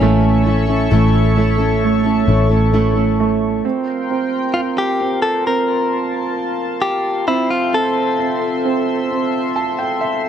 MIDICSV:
0, 0, Header, 1, 6, 480
1, 0, Start_track
1, 0, Tempo, 909091
1, 3, Time_signature, 4, 2, 24, 8
1, 5433, End_track
2, 0, Start_track
2, 0, Title_t, "Analog synth pad"
2, 0, Program_c, 0, 89
2, 2, Note_on_c, 0, 69, 86
2, 3, Note_on_c, 0, 73, 75
2, 4, Note_on_c, 0, 85, 96
2, 5, Note_on_c, 0, 76, 77
2, 1903, Note_off_c, 0, 69, 0
2, 1904, Note_off_c, 0, 73, 0
2, 1904, Note_off_c, 0, 85, 0
2, 1905, Note_off_c, 0, 76, 0
2, 1923, Note_on_c, 0, 70, 74
2, 1923, Note_on_c, 0, 84, 80
2, 1924, Note_on_c, 0, 79, 68
2, 1925, Note_on_c, 0, 65, 64
2, 2874, Note_off_c, 0, 79, 0
2, 2884, Note_on_c, 0, 81, 63
2, 3824, Note_off_c, 0, 70, 0
2, 3833, Note_on_c, 0, 76, 68
2, 3834, Note_off_c, 0, 81, 0
2, 3834, Note_on_c, 0, 60, 67
2, 3837, Note_on_c, 0, 69, 68
2, 5433, Note_off_c, 0, 60, 0
2, 5433, Note_off_c, 0, 65, 0
2, 5433, Note_off_c, 0, 69, 0
2, 5433, Note_off_c, 0, 76, 0
2, 5433, Note_off_c, 0, 84, 0
2, 5433, End_track
3, 0, Start_track
3, 0, Title_t, "Clean electric guitar"
3, 0, Program_c, 1, 27
3, 0, Note_on_c, 1, 61, 77
3, 1421, Note_off_c, 1, 61, 0
3, 2396, Note_on_c, 1, 65, 64
3, 2429, Note_off_c, 1, 65, 0
3, 2525, Note_on_c, 1, 67, 62
3, 2756, Note_off_c, 1, 67, 0
3, 2758, Note_on_c, 1, 69, 75
3, 2872, Note_off_c, 1, 69, 0
3, 2888, Note_on_c, 1, 70, 68
3, 3344, Note_off_c, 1, 70, 0
3, 3599, Note_on_c, 1, 67, 62
3, 3841, Note_off_c, 1, 67, 0
3, 3843, Note_on_c, 1, 64, 81
3, 3954, Note_off_c, 1, 64, 0
3, 3962, Note_on_c, 1, 65, 68
3, 4086, Note_off_c, 1, 65, 0
3, 4089, Note_on_c, 1, 69, 77
3, 5433, Note_off_c, 1, 69, 0
3, 5433, End_track
4, 0, Start_track
4, 0, Title_t, "Steel-string acoustic guitar"
4, 0, Program_c, 2, 25
4, 0, Note_on_c, 2, 45, 74
4, 0, Note_on_c, 2, 52, 73
4, 4, Note_on_c, 2, 57, 75
4, 4, Note_on_c, 2, 61, 69
4, 6, Note_on_c, 2, 64, 85
4, 8, Note_on_c, 2, 69, 79
4, 230, Note_off_c, 2, 57, 0
4, 235, Note_off_c, 2, 61, 0
4, 236, Note_on_c, 2, 57, 58
4, 239, Note_off_c, 2, 64, 0
4, 241, Note_off_c, 2, 45, 0
4, 241, Note_off_c, 2, 52, 0
4, 241, Note_on_c, 2, 61, 68
4, 243, Note_off_c, 2, 69, 0
4, 246, Note_on_c, 2, 64, 72
4, 249, Note_on_c, 2, 69, 69
4, 349, Note_off_c, 2, 69, 0
4, 355, Note_off_c, 2, 64, 0
4, 355, Note_on_c, 2, 69, 60
4, 359, Note_off_c, 2, 57, 0
4, 359, Note_off_c, 2, 61, 0
4, 361, Note_on_c, 2, 64, 52
4, 365, Note_on_c, 2, 61, 48
4, 369, Note_on_c, 2, 57, 45
4, 474, Note_off_c, 2, 57, 0
4, 476, Note_off_c, 2, 61, 0
4, 476, Note_on_c, 2, 45, 87
4, 478, Note_off_c, 2, 64, 0
4, 478, Note_on_c, 2, 52, 90
4, 479, Note_off_c, 2, 69, 0
4, 480, Note_on_c, 2, 57, 90
4, 482, Note_on_c, 2, 61, 93
4, 485, Note_on_c, 2, 64, 94
4, 485, Note_on_c, 2, 69, 95
4, 710, Note_off_c, 2, 57, 0
4, 716, Note_off_c, 2, 61, 0
4, 717, Note_on_c, 2, 57, 54
4, 720, Note_off_c, 2, 45, 0
4, 720, Note_off_c, 2, 52, 0
4, 720, Note_off_c, 2, 64, 0
4, 723, Note_on_c, 2, 61, 63
4, 724, Note_off_c, 2, 69, 0
4, 726, Note_on_c, 2, 64, 67
4, 731, Note_on_c, 2, 69, 64
4, 830, Note_off_c, 2, 69, 0
4, 834, Note_off_c, 2, 64, 0
4, 836, Note_on_c, 2, 69, 62
4, 839, Note_off_c, 2, 61, 0
4, 840, Note_off_c, 2, 57, 0
4, 840, Note_on_c, 2, 64, 62
4, 845, Note_on_c, 2, 61, 57
4, 849, Note_on_c, 2, 57, 52
4, 1072, Note_off_c, 2, 69, 0
4, 1077, Note_off_c, 2, 64, 0
4, 1078, Note_on_c, 2, 69, 52
4, 1081, Note_off_c, 2, 61, 0
4, 1083, Note_on_c, 2, 64, 47
4, 1085, Note_off_c, 2, 57, 0
4, 1087, Note_on_c, 2, 61, 44
4, 1091, Note_on_c, 2, 57, 46
4, 1191, Note_off_c, 2, 57, 0
4, 1196, Note_off_c, 2, 61, 0
4, 1197, Note_on_c, 2, 57, 68
4, 1199, Note_off_c, 2, 64, 0
4, 1201, Note_off_c, 2, 69, 0
4, 1203, Note_on_c, 2, 61, 65
4, 1205, Note_on_c, 2, 64, 67
4, 1209, Note_on_c, 2, 69, 68
4, 1311, Note_off_c, 2, 69, 0
4, 1317, Note_off_c, 2, 64, 0
4, 1317, Note_on_c, 2, 69, 55
4, 1320, Note_off_c, 2, 57, 0
4, 1322, Note_off_c, 2, 61, 0
4, 1323, Note_on_c, 2, 64, 58
4, 1328, Note_on_c, 2, 61, 50
4, 1330, Note_on_c, 2, 57, 50
4, 1437, Note_off_c, 2, 57, 0
4, 1438, Note_off_c, 2, 61, 0
4, 1439, Note_off_c, 2, 64, 0
4, 1439, Note_on_c, 2, 45, 73
4, 1440, Note_off_c, 2, 69, 0
4, 1440, Note_on_c, 2, 52, 79
4, 1444, Note_on_c, 2, 57, 76
4, 1445, Note_on_c, 2, 61, 78
4, 1446, Note_on_c, 2, 64, 80
4, 1448, Note_on_c, 2, 69, 74
4, 1551, Note_off_c, 2, 69, 0
4, 1556, Note_off_c, 2, 64, 0
4, 1557, Note_on_c, 2, 69, 53
4, 1561, Note_off_c, 2, 45, 0
4, 1562, Note_off_c, 2, 52, 0
4, 1562, Note_off_c, 2, 61, 0
4, 1563, Note_off_c, 2, 57, 0
4, 1563, Note_on_c, 2, 64, 51
4, 1568, Note_on_c, 2, 61, 51
4, 1572, Note_on_c, 2, 57, 44
4, 1920, Note_off_c, 2, 69, 0
4, 1923, Note_off_c, 2, 64, 0
4, 1925, Note_off_c, 2, 61, 0
4, 1928, Note_off_c, 2, 57, 0
4, 5433, End_track
5, 0, Start_track
5, 0, Title_t, "Grand piano"
5, 0, Program_c, 3, 0
5, 0, Control_c, 3, 64, 127
5, 9, Control_c, 3, 64, 0
5, 12, Note_on_c, 3, 57, 74
5, 89, Control_c, 3, 64, 127
5, 247, Note_off_c, 3, 57, 0
5, 254, Note_on_c, 3, 57, 53
5, 481, Note_off_c, 3, 57, 0
5, 489, Note_on_c, 3, 57, 55
5, 721, Note_off_c, 3, 57, 0
5, 729, Note_on_c, 3, 57, 54
5, 964, Note_off_c, 3, 57, 0
5, 972, Note_on_c, 3, 57, 55
5, 1204, Note_off_c, 3, 57, 0
5, 1212, Note_on_c, 3, 57, 55
5, 1446, Note_off_c, 3, 57, 0
5, 1453, Note_on_c, 3, 57, 59
5, 1682, Note_off_c, 3, 57, 0
5, 1690, Note_on_c, 3, 57, 56
5, 1919, Note_off_c, 3, 57, 0
5, 1926, Note_on_c, 3, 60, 55
5, 1930, Control_c, 3, 64, 0
5, 2014, Control_c, 3, 64, 127
5, 2158, Note_off_c, 3, 60, 0
5, 2165, Note_on_c, 3, 60, 43
5, 2399, Note_off_c, 3, 60, 0
5, 2407, Note_on_c, 3, 60, 42
5, 2637, Note_off_c, 3, 60, 0
5, 2645, Note_on_c, 3, 60, 44
5, 2878, Note_off_c, 3, 60, 0
5, 2886, Note_on_c, 3, 60, 40
5, 3824, Note_off_c, 3, 60, 0
5, 3841, Note_on_c, 3, 60, 63
5, 3849, Control_c, 3, 64, 0
5, 3944, Control_c, 3, 64, 127
5, 4074, Note_off_c, 3, 60, 0
5, 4082, Note_on_c, 3, 60, 41
5, 4316, Note_off_c, 3, 60, 0
5, 4324, Note_on_c, 3, 60, 46
5, 4559, Note_off_c, 3, 60, 0
5, 4567, Note_on_c, 3, 60, 48
5, 4801, Note_off_c, 3, 60, 0
5, 4809, Note_on_c, 3, 60, 43
5, 5047, Note_on_c, 3, 81, 67
5, 5157, Note_off_c, 3, 81, 0
5, 5167, Note_on_c, 3, 79, 56
5, 5277, Note_off_c, 3, 79, 0
5, 5285, Note_on_c, 3, 76, 60
5, 5433, Note_off_c, 3, 60, 0
5, 5433, Note_off_c, 3, 76, 0
5, 5433, End_track
6, 0, Start_track
6, 0, Title_t, "Fingered electric bass"
6, 0, Program_c, 4, 33
6, 6, Note_on_c, 4, 33, 99
6, 463, Note_off_c, 4, 33, 0
6, 485, Note_on_c, 4, 33, 99
6, 1183, Note_off_c, 4, 33, 0
6, 1203, Note_on_c, 4, 33, 94
6, 1902, Note_off_c, 4, 33, 0
6, 5433, End_track
0, 0, End_of_file